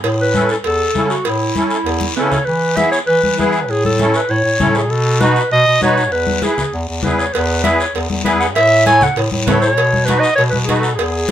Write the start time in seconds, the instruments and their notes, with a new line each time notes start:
0.04 bass clarinet A2, cowbell, high conga, long guiro
0.21 clarinet B4
0.33 accordion C#4 E4 A4, high conga, short guiro
0.49 clarinet A4, short guiro
0.63 bass clarinet E2, clarinet A4, cowbell, high conga, long guiro
0.94 bass clarinet C#3, accordion C#4 E4 A4, high conga, short guiro
1.10 clarinet F#4, short guiro
1.25 bass clarinet A2, clarinet E4, cowbell, high conga, long guiro
1.55 accordion C#4 E4 A4, high conga, short guiro
1.71 short guiro
1.85 bass clarinet E2, cowbell, high conga, long guiro
2.01 high conga
2.16 bass clarinet C#3, accordion C#4 E4 A4, clarinet B4, low timbale, short guiro
2.32 clarinet C#5, low conga, short guiro
2.45 bass clarinet E3, clarinet B4, high conga, long guiro
2.76 accordion B3 E4 G#4, clarinet E5, high conga, short guiro
2.91 clarinet C#5, short guiro
3.07 bass clarinet E3, clarinet B4, high conga, long guiro
3.23 bass clarinet E3, high conga
3.38 bass clarinet E3, accordion B3 E4 G#4, clarinet B4, high conga, short guiro
3.53 short guiro
3.68 bass clarinet A2, clarinet G#4, high conga, long guiro
3.85 clarinet A4, high conga
3.98 accordion C#4 E4 A4, high conga, short guiro
4.14 clarinet B4, short guiro
4.29 bass clarinet A2, clarinet C#5, high conga, long guiro
4.44 bass clarinet A2
4.59 bass clarinet A2, accordion C#4 E4 A4, high conga, low conga, short guiro
4.75 clarinet G#4, short guiro
4.90 bass clarinet B2, clarinet A4, high conga, long guiro
5.20 accordion D#4 F#4 B4, clarinet B4, high conga, short guiro
5.36 short guiro
5.51 bass clarinet B2, clarinet D#5, high conga, long guiro
5.67 bass clarinet B2
5.81 bass clarinet B2, accordion D#4 F#4 B4, clarinet C#5, high conga, short guiro
5.97 short guiro
6.12 bass clarinet E2, clarinet B4, high conga, long guiro
6.27 high conga
6.42 accordion E4 G#4 B4, clarinet G#4, high conga, short guiro
6.58 low conga, short guiro
6.73 bass clarinet E2, high conga, long guiro
6.89 bass clarinet E2
7.03 bass clarinet E2, accordion E4 G#4 B4, clarinet B4, high conga, low conga, short guiro
7.19 clarinet C#5, short guiro
7.33 bass clarinet E2, clarinet B4, cowbell, high conga, long guiro
7.64 accordion E4 G#4 B4, clarinet E5, cowbell, high conga, short guiro
7.79 clarinet C#5, short guiro
7.95 bass clarinet E2, cowbell, high conga, long guiro
8.10 bass clarinet E2, high conga
8.24 bass clarinet E2, accordion E4 G#4 B4, clarinet E5, cowbell, high conga, short guiro
8.40 clarinet F#5, short guiro
8.55 bass clarinet A2, clarinet E5, cowbell, high conga, long guiro
8.85 accordion E4 A4 C#5, clarinet G#5, cowbell, high conga, short guiro
9.01 clarinet F#5, low conga, short guiro
9.16 bass clarinet A2, cowbell, high conga, long guiro
9.32 bass clarinet A2, high conga
9.46 bass clarinet A2, accordion E4 A4 C#5, clarinet B4, cowbell, high conga, low conga, low timbale, short guiro
9.61 clarinet C#5, short guiro
9.77 bass clarinet B2, cowbell, high conga, long guiro
9.93 high conga
10.05 accordion D#4 F#4 B4, clarinet B4, cowbell, high conga, short guiro
10.20 clarinet D#5, short guiro
10.36 bass clarinet B2, clarinet C#5, cowbell, high conga, long guiro
10.50 bass clarinet B2, clarinet B4, high conga
10.64 accordion D#4 F#4, clarinet G#4, high conga
10.69 bass clarinet B2, accordion B4, cowbell, short guiro
10.80 clarinet A4, short guiro
10.95 clarinet G#4, cowbell, high conga, long guiro
11.00 bass clarinet E2